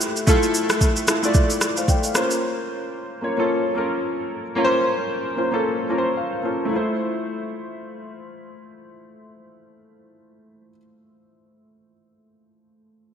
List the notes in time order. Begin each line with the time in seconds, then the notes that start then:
Already playing: A3 E4 F4 G4 C5
0.01 shaker
0.17 shaker
0.27 A3 E4 F4 A4, kick, shaker
0.43 shaker
0.54 shaker
0.70 cross-stick, shaker
0.81 kick, shaker
0.96 shaker
1.07 A3 E4 F4 A4, cross-stick, shaker
1.22 A3 E4 F4 D5, shaker
1.34 kick, shaker
1.50 shaker
1.61 cross-stick, shaker
1.77 C5 F5, shaker
1.88 D5 G5, kick, shaker
2.04 C5 F5, shaker
2.14 A#3 C#4 F4 C5, cross-stick, shaker
2.31 shaker
3.21 A#3 C#4 F4 C#5
3.37 A#3 C#4 F4 A4
3.75 A#3 C#4 F4 A#4
4.55 A#3 C#4 F4 A#4
4.65 C5
5.36 A#3 C#4 F4 C5
5.51 A#3 C#4 F4 A4
5.89 A#3 C#4 F4 A#4 A#5
5.98 C5
6.17 F5
6.43 A#3 C#4 F4 A4
6.65 A3 E4
6.73 F4 C5